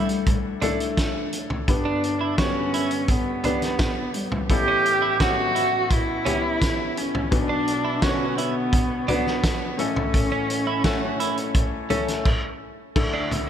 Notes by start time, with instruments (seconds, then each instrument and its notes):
Already playing: upright piano D2 D3 A3 D4 E4 A4, cello G3
0.09 closed hi-hat
0.26 kick, closed hi-hat
0.62 upright piano A3 D4 E4 A4, clean electric guitar D4, closed hi-hat, floor tom
0.80 closed hi-hat
0.97 kick, snare, closed hi-hat
1.33 closed hi-hat
1.50 floor tom
1.68 upright piano G1 G2 B3 D4 G4 B4, cello D4, kick, closed hi-hat
1.85 clean electric guitar D4
2.04 closed hi-hat
2.21 clean electric guitar E4
2.38 upright piano D3 G3 B3 C#5, cello C#4, clean electric guitar F#4, kick, snare, closed hi-hat
2.74 clean electric guitar E4, closed hi-hat
2.91 closed hi-hat
3.08 cello B3, kick, closed hi-hat
3.44 upright piano B3 D4 G4 B4, clean electric guitar D4, closed hi-hat, floor tom
3.62 snare, closed hi-hat
3.79 kick, snare, closed hi-hat
4.14 cello G3, closed hi-hat
4.32 floor tom
4.49 upright piano A1 A2 B3 C#4 E4 A4, cello G4, kick, closed hi-hat
4.68 clean electric guitar C#4
4.86 closed hi-hat
5.02 clean electric guitar E4
5.20 upright piano B3 C#4 E4 A4, clean electric guitar F#4, cello F#4, kick, snare, closed hi-hat
5.55 clean electric guitar E4, closed hi-hat
5.91 cello E4, kick, closed hi-hat
6.25 upright piano B3 C#4 E4 G4, clean electric guitar C#4, closed hi-hat, floor tom
6.62 kick, snare, closed hi-hat
6.97 cello C#4, closed hi-hat
7.15 floor tom
7.31 upright piano B1 B2 B3 D4 F#4 B4, cello D4, kick, closed hi-hat
7.49 clean electric guitar D4
7.67 closed hi-hat
7.85 clean electric guitar E4
8.02 upright piano D3 B3 F#4 C#5, cello C#4, clean electric guitar F#4, kick, snare, closed hi-hat
8.38 cello B3, clean electric guitar E4, closed hi-hat
8.73 kick, closed hi-hat
9.08 cello B3, upright piano B3 D4 F#4 B4, clean electric guitar D4, closed hi-hat, floor tom
9.27 snare
9.44 kick, snare, closed hi-hat
9.77 upright piano A1 A2 A3 C#4 E4 A4, cello C#4, closed hi-hat
9.96 floor tom
10.14 kick, closed hi-hat
10.32 clean electric guitar C#4
10.50 closed hi-hat
10.67 clean electric guitar E4
10.84 upright piano A3 C#4 E4 A4, clean electric guitar F#4, kick, snare, closed hi-hat
11.20 clean electric guitar E4, closed hi-hat
11.37 closed hi-hat
11.55 kick, closed hi-hat
11.90 upright piano A3 C#4 E4 A4, clean electric guitar C#4, closed hi-hat, floor tom
12.08 snare, closed hi-hat
12.25 kick, crash
12.96 upright piano D2 D3 A3 D4 E4 A4, kick, crash
13.14 clean electric guitar D4
13.31 closed hi-hat, floor tom